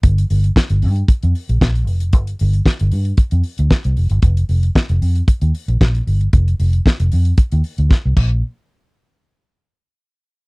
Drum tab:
CC |----------------|----------------|----------------|--------------x-|
HH |xxox-xoxxxox-xox|xxox-xoxxxox-xox|xxox-xoxxxox-xox|xxox-xoxxxox----|
SD |----o-------o---|----o-------o---|----o-------o---|----o-------o---|
BD |o---o---o---o---|o---o---o---o---|o---o---o---o---|o---o---o---o-o-|

CC |----------------|
HH |----------------|
SD |----------------|
BD |----------------|